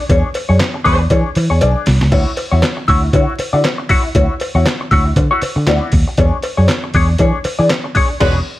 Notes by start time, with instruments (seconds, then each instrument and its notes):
0.00 muted clean electric guitar stroke
0.09 picked electric bass E2, clean electric guitar D4 G#4 C#5, kick, closed hi-hat, cowbell
0.34 muted clean electric guitar stroke, open hi-hat, cowbell
0.49 picked electric bass F#2, clean electric guitar D4 G#4 C#5
0.60 muted clean electric guitar stroke, snare, clap, closed hi-hat, cowbell
0.74 muted clean electric guitar stroke
0.84 picked electric bass E2, horn section G#3 F#4 B4, clean electric guitar D4 G#4 C#5, kick, open hi-hat
1.00 muted clean electric guitar stroke
1.10 picked electric bass E3, clean electric guitar D4 G#4 C#5, kick, closed hi-hat, cowbell
1.35 picked electric bass E3, muted clean electric guitar stroke, open hi-hat, cowbell
1.50 picked electric bass E2, clean electric guitar D4 G#4 C#5
1.61 picked electric bass B1, clean electric guitar D4 G#4 D5, closed hi-hat, cowbell
1.86 picked electric bass C2, muted clean electric guitar stroke, snare, open hi-hat
2.01 picked electric bass C#2, muted clean electric guitar stroke, snare
2.12 picked electric bass D2, clean electric guitar E4 F#4 C#5, kick, crash, cowbell
2.37 muted clean electric guitar stroke, open hi-hat, cowbell
2.52 picked electric bass E2, clean electric guitar E4 F#4 C#5
2.62 muted clean electric guitar stroke, snare, clap, closed hi-hat, cowbell
2.77 muted clean electric guitar stroke
2.88 picked electric bass D2, clean electric guitar E4 F#4 C#5, kick, open hi-hat
3.03 muted clean electric guitar stroke
3.13 picked electric bass D3, clean electric guitar E4 F#4 C#5, kick, closed hi-hat, cowbell
3.38 muted clean electric guitar stroke, muted picked electric bass stroke, open hi-hat, cowbell
3.53 picked electric bass D3, clean electric guitar E4 F#4 D5
3.64 muted clean electric guitar stroke, snare, clap, closed hi-hat, cowbell
3.78 muted clean electric guitar stroke
3.89 clean electric guitar E4 F#4 C#5, kick, open hi-hat
4.03 muted clean electric guitar stroke
4.15 picked electric bass D2, clean electric guitar E4 F#4 C#5, kick, closed hi-hat, cowbell
4.40 muted clean electric guitar stroke, open hi-hat, cowbell
4.55 picked electric bass E2, clean electric guitar E4 F#4 C#5
4.66 muted clean electric guitar stroke, snare, clap, closed hi-hat, cowbell
4.81 muted clean electric guitar stroke
4.91 picked electric bass D2, clean electric guitar E4 F#4 C#5, kick, open hi-hat
5.05 muted clean electric guitar stroke
5.16 picked electric bass D3, muted clean electric guitar stroke, kick, closed hi-hat, cowbell
5.31 clean electric guitar E4 F#4 C#5
5.42 muted clean electric guitar stroke, muted picked electric bass stroke, open hi-hat, cowbell
5.56 picked electric bass D3, muted clean electric guitar stroke
5.67 picked electric bass D2, clean electric guitar E4 F#4 D5, snare, clap, closed hi-hat, cowbell
5.92 picked electric bass D#2, muted clean electric guitar stroke, kick, open hi-hat
6.08 muted clean electric guitar stroke
6.17 picked electric bass E2, clean electric guitar D4 G#4 C#5, kick, closed hi-hat, cowbell
6.42 muted clean electric guitar stroke, open hi-hat, cowbell
6.57 picked electric bass F#2, clean electric guitar D4 G#4 C#5
6.68 snare, clap, closed hi-hat, cowbell
6.84 muted clean electric guitar stroke
6.94 picked electric bass E2, clean electric guitar D4 G#4 C#5, kick, open hi-hat
7.09 muted clean electric guitar stroke
7.18 picked electric bass E3, clean electric guitar D4 G#4 C#5, kick, closed hi-hat, cowbell
7.44 muted picked electric bass stroke, muted clean electric guitar stroke, open hi-hat, cowbell
7.59 picked electric bass E3, clean electric guitar D4 G#4 D5
7.69 muted clean electric guitar stroke, snare, clap, closed hi-hat, cowbell
7.84 muted clean electric guitar stroke
7.95 clean electric guitar D4 G#4 C#5, kick, open hi-hat
8.10 muted clean electric guitar stroke
8.20 picked electric bass E1, horn section G#3 F#4 B4, clean electric guitar D4 G#4 C#5, kick, snare, crash